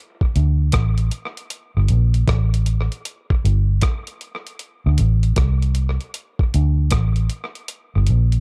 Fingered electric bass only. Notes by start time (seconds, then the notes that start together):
0.36 D2
0.74 A1
1.77 G1
1.90 A#1
2.28 A1
3.45 G1
4.86 D2
4.99 A1
5.37 C2
6.54 D2
6.92 A1
7.96 G1
8.09 A#1